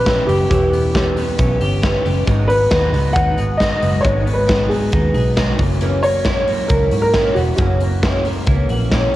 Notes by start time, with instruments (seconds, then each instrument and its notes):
Already playing: fingered electric bass A#1, clean electric guitar E3 B3 G4, upright piano B4
0.06 twelve-string acoustic guitar E3 B3 C#4 G4, kick, snare, closed hi-hat
0.27 fingered electric bass F#1, twelve-string acoustic guitar B3 C#4 G4, upright piano G4, open hi-hat
0.50 fingered electric bass E1, twelve-string acoustic guitar E3 B3 C#4 G4, upright piano G4, kick, closed hi-hat
0.73 twelve-string acoustic guitar B3 C#4 G4, open hi-hat
0.94 twelve-string acoustic guitar E3 B3 C#4 G4, kick, snare, closed hi-hat
1.16 twelve-string acoustic guitar B3 C#4 G4, open hi-hat
1.38 fingered electric bass B1, twelve-string acoustic guitar E3 B3 C#4 G4, kick, closed hi-hat
1.60 fingered electric bass G1, twelve-string acoustic guitar B3 C#4 G4, open hi-hat
1.82 twelve-string acoustic guitar E3 B3 C#4 G4, kick, snare, closed hi-hat
2.05 fingered electric bass F#1, twelve-string acoustic guitar B3 C#4 G4, open hi-hat
2.26 fingered electric bass G#1, twelve-string acoustic guitar G#2 D#3 F#3 B3 D#4, kick, closed hi-hat
2.48 twelve-string acoustic guitar B3 D#4, upright piano B4, open hi-hat
2.71 fingered electric bass D#2, twelve-string acoustic guitar G#2 D#3 F#3 B3 D#4, kick, snare, closed hi-hat
2.92 fingered electric bass C#2, twelve-string acoustic guitar F#3 B3 D#4, open hi-hat
3.13 fingered electric bass D#2, twelve-string acoustic guitar D#3 F#3 B3 D#4, upright piano F#5, kick, closed hi-hat
3.37 fingered electric bass G#1, twelve-string acoustic guitar F#3 B3 D#4, clean electric guitar G#4, open hi-hat
3.57 twelve-string acoustic guitar G#2 D#3 F#3 B3 D#4, upright piano D#5, kick, snare, closed hi-hat
3.80 fingered electric bass F#1, twelve-string acoustic guitar F#3 B3 D#4, clean electric guitar F#4, open hi-hat
3.94 clean electric guitar G#4
4.01 fingered electric bass G#1, twelve-string acoustic guitar G#2 D#3 F#3 B3 D#4, upright piano C#5, kick
4.05 closed hi-hat
4.25 twelve-string acoustic guitar F#3 B3 D#4, open hi-hat
4.34 upright piano B4
4.46 twelve-string acoustic guitar G#2 D#3 F#3 B3 D#4, clean electric guitar C#4, kick, snare, closed hi-hat
4.59 clean electric guitar D#4
4.69 twelve-string acoustic guitar F#3 B3 D#4, upright piano G#4, open hi-hat
4.92 fingered electric bass D#2, twelve-string acoustic guitar D#3 F#3 B3 D#4, kick, closed hi-hat
5.14 fingered electric bass B1, twelve-string acoustic guitar F#3 B3 D#4, clean electric guitar G#4, open hi-hat
5.36 twelve-string acoustic guitar G#2 D#3 F#3 B3 D#4, kick, snare, closed hi-hat
5.59 fingered electric bass F#1, clean electric guitar F#2, twelve-string acoustic guitar E3 A#3 C#4, kick, open hi-hat
5.81 twelve-string acoustic guitar F#2 C#3 E3 A#3 C#4, closed hi-hat
6.03 twelve-string acoustic guitar E3 A#3 C#4, upright piano C#5, open hi-hat
6.25 twelve-string acoustic guitar F#2 C#3 E3 A#3 C#4, clean electric guitar E4, kick, snare, closed hi-hat
6.47 twelve-string acoustic guitar E3 A#3 C#4, open hi-hat
6.68 fingered electric bass C#2, twelve-string acoustic guitar C#3 E3 A#3 C#4, clean electric guitar E4, upright piano A#4, kick, closed hi-hat
6.91 fingered electric bass G#2, twelve-string acoustic guitar E3 A#3 C#4, clean electric guitar F#4, open hi-hat
7.02 upright piano A#4
7.14 twelve-string acoustic guitar F#2 C#3 E3 A#3 C#4, clean electric guitar E4, kick, snare, closed hi-hat
7.35 fingered electric bass E1, twelve-string acoustic guitar E3 A#3 C#4, upright piano F#4, clean electric guitar F#4, open hi-hat
7.56 fingered electric bass F#1, twelve-string acoustic guitar F#2 C#3 E3 A#3 C#4, upright piano F#4, kick, closed hi-hat
7.80 twelve-string acoustic guitar E3 A#3 C#4, open hi-hat
8.03 twelve-string acoustic guitar F#2 C#3 E3 A#3 C#4, clean electric guitar E4, kick, snare, closed hi-hat
8.25 twelve-string acoustic guitar E3 A#3 C#4, open hi-hat
8.47 fingered electric bass C#2, twelve-string acoustic guitar C#3 E3 A#3 C#4, clean electric guitar E4, kick, closed hi-hat
8.69 fingered electric bass A#1, twelve-string acoustic guitar E3 A#3 C#4, clean electric guitar F#4, open hi-hat
8.91 twelve-string acoustic guitar F#2 C#3 E3 A#3 C#4, clean electric guitar E4, kick, snare, closed hi-hat